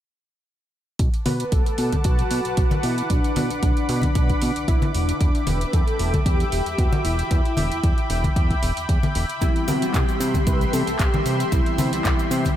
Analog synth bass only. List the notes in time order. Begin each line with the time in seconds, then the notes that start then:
0.99 B1
1.26 B2
1.52 B1
1.78 B2
2.05 B1
2.31 B2
2.45 B1
2.57 B1
2.84 B2
3.10 B1
3.37 B2
3.51 B1
3.63 B1
3.89 B2
4.16 B1
4.42 B2
4.57 B1
4.68 B1
4.95 E1
5.21 E2
5.47 E1
5.73 E2
6.00 E1
6.26 E2
6.52 E1
6.66 E2
6.78 E2
7.05 E1
7.31 E2
7.58 E1
7.84 E2
8.10 E1
8.36 E2
8.63 E1
8.77 E2
8.89 E2
9.16 E1
9.42 C2
9.68 C3
9.94 C2
10.20 C3
10.47 C2
10.73 C3
10.88 C2
11.00 C2
11.26 C3
11.52 C2
11.78 C3
11.93 C2
12.05 C2
12.31 C3